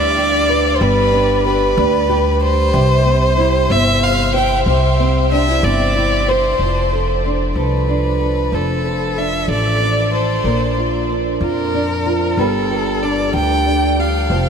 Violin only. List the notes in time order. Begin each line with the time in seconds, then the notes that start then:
Already playing: D5
0.75 C5
0.83 B4
1.47 B4
2.43 C5
3.71 E5
4.03 F5
4.35 G5
4.67 C5
5.32 E5
5.64 D5
6.29 C5
7.56 B4
8.54 A4
9.18 E5
9.50 D5
10.14 C5
11.43 A#4
12.38 A4
13.03 D5
13.35 G5
13.99 F5